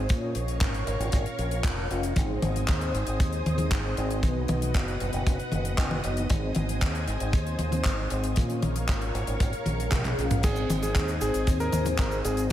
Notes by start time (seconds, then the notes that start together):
0.09 A#2 C#4 F4 A#4 C#5 F5 C#6, kick, closed hi-hat
0.35 A#1, closed hi-hat
0.48 closed hi-hat
0.61 G#1, kick, clap, closed hi-hat
0.74 closed hi-hat
0.87 G#1, closed hi-hat
1.00 G#1, closed hi-hat
1.12 G#1, kick, closed hi-hat
1.26 closed hi-hat
1.39 A#1, closed hi-hat
1.51 closed hi-hat
1.64 F1, kick, clap, closed hi-hat
1.90 F1 C#4 F4 A#4 F5, closed hi-hat
2.03 closed hi-hat
2.16 G#1 G#2 C4 D#4 G#4 C5 D#5 G#5 D#6, kick, closed hi-hat, high tom
2.42 G#1, closed hi-hat, high tom
2.56 closed hi-hat
2.68 D#2, kick, clap, closed hi-hat
2.81 closed hi-hat
2.94 G#1, closed hi-hat
3.07 G#1, closed hi-hat
3.20 D#2, kick, closed hi-hat
3.33 closed hi-hat
3.46 D#2, closed hi-hat, high tom
3.58 closed hi-hat, high tom
3.71 G#1, kick, clap, closed hi-hat
3.97 G#1 C4 D#4 G#4 C5, closed hi-hat
4.10 closed hi-hat
4.23 B1 B2 B3 D#4 F#4 B4 F#5 D#6, kick, closed hi-hat, high tom
4.48 B1, closed hi-hat, high tom
4.62 closed hi-hat
4.74 F#1, kick, clap, closed hi-hat
4.88 closed hi-hat
5.00 F#1, closed hi-hat
5.13 F#1, closed hi-hat
5.27 F#1, kick, closed hi-hat
5.40 closed hi-hat
5.52 F#1, closed hi-hat, high tom
5.65 closed hi-hat
5.78 F#1, kick, clap, closed hi-hat
5.91 high tom
6.04 F#1 B3 D#4 F#4 D#5, closed hi-hat
6.17 closed hi-hat
6.30 G#1 G#2 C4 D#4 G#4 C5 G#5, kick, closed hi-hat, high tom
6.55 G#1, closed hi-hat, high tom
6.69 closed hi-hat
6.81 D#2, kick, clap, closed hi-hat
6.95 closed hi-hat
7.08 G#1, closed hi-hat
7.20 G#1, closed hi-hat
7.33 D#2, kick, closed hi-hat
7.47 closed hi-hat
7.59 D#2, closed hi-hat, high tom
7.72 closed hi-hat, high tom
7.85 G#1, kick, clap, closed hi-hat
8.10 G#1 C4 D#4 G#4 C5, closed hi-hat
8.24 closed hi-hat
8.36 A#2 C#4 F4 A#4 C#5 F5 C#6, kick, closed hi-hat, high tom
8.50 closed hi-hat
8.62 A#1, closed hi-hat, high tom
8.76 closed hi-hat
8.89 G#1, kick, clap, closed hi-hat
9.02 closed hi-hat
9.14 G#1, closed hi-hat
9.27 G#1, closed hi-hat
9.40 G#1, kick, closed hi-hat, swell
9.53 closed hi-hat
9.66 A#1, closed hi-hat, high tom
9.80 closed hi-hat
9.91 A#1, kick, clap, closed hi-hat, mid tom
10.05 clap, closed hi-hat, mid tom
10.18 A#1 C#4 F4 A#4 F5, closed hi-hat
10.31 closed hi-hat, mid tom
10.43 G#1 G#2 C4 D#4 G#4 C5 D#5 G#5 D#6, kick, closed hi-hat, high tom, crash, cabasa
10.56 cabasa
10.70 G#1, closed hi-hat, high tom, cabasa
10.83 G#4, closed hi-hat, cabasa
10.95 D#2, kick, clap, closed hi-hat, cabasa
11.08 closed hi-hat, cabasa
11.21 G#1 G#4, closed hi-hat, cabasa
11.34 G#1, closed hi-hat, cabasa
11.47 D#2, kick, closed hi-hat, cabasa
11.60 A#4, closed hi-hat, cabasa
11.72 D#2, closed hi-hat, high tom, cabasa
11.86 closed hi-hat, high tom, cabasa
11.98 G#1 A#4, kick, clap, closed hi-hat, cabasa
12.12 cabasa
12.25 G#1 C4 D#4 G#4 C5, closed hi-hat, cabasa
12.37 closed hi-hat, cabasa